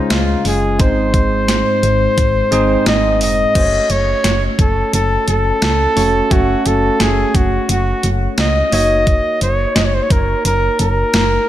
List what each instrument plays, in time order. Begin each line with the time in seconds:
Already playing: tine electric piano C#3 G#3 C#4 F4 C5, flugelhorn D#4
0.10 fm bass C#2, flugelhorn F4, snare, closed hi-hat
0.45 fm bass F#1, flugelhorn G#4, open hi-hat
0.79 fm bass G#1, tine electric piano G#2 G#3 C4 D#4 C5, flugelhorn C5, kick, closed hi-hat
1.14 kick, closed hi-hat
1.48 snare, closed hi-hat
1.83 fm bass G#1, closed hi-hat
2.18 fm bass G#1, kick, closed hi-hat
2.51 fm bass G#1, tine electric piano G#3 C4 D#4 G#4, closed hi-hat
2.86 fm bass G#1, flugelhorn D#5, snare, closed hi-hat
3.21 fm bass F1, flugelhorn D#5, open hi-hat
3.55 fm bass F#1, tine electric piano A3 C#4 F#4 C5, kick, closed hi-hat, crash
3.62 tine electric piano C#5
3.90 fm bass F#1, flugelhorn C#5, closed hi-hat
4.24 fm bass F#1, snare, closed hi-hat
4.59 fm bass F#1, flugelhorn A4, kick, closed hi-hat
4.93 fm bass F#1, flugelhorn A4, closed hi-hat
5.28 fm bass F#1, flugelhorn A4, closed hi-hat
5.62 fm bass C#2, snare, closed hi-hat
5.96 fm bass F1, tine electric piano A3 C#4 F#4 C#5, open hi-hat
6.30 fm bass F#1, tine electric piano A3 C#4 F#4 C#5, flugelhorn F#4, kick, closed hi-hat
6.66 fm bass F#1, flugelhorn A4, closed hi-hat
7.00 fm bass F#1, flugelhorn G#4, snare, closed hi-hat
7.35 fm bass F#1, flugelhorn F#4, kick, closed hi-hat
7.69 fm bass F#1, flugelhorn F#4, closed hi-hat
8.03 fm bass F#1, closed hi-hat
8.38 fm bass C#2, flugelhorn D#5, snare, closed hi-hat
8.72 fm bass F#1, tine electric piano A#3 D#4 F#4 C#5, flugelhorn D#5, open hi-hat
9.07 kick, closed hi-hat
9.41 fm bass F#1, flugelhorn C#5, closed hi-hat
9.76 fm bass F#1, flugelhorn D#5, snare, closed hi-hat
9.85 flugelhorn C#5
9.95 flugelhorn C5
10.03 flugelhorn C#5
10.10 fm bass F#1, flugelhorn A#4, kick, closed hi-hat
10.45 fm bass F#1, flugelhorn A#4, closed hi-hat
10.79 fm bass F#1, flugelhorn A#4, closed hi-hat
11.14 fm bass F#1, snare, closed hi-hat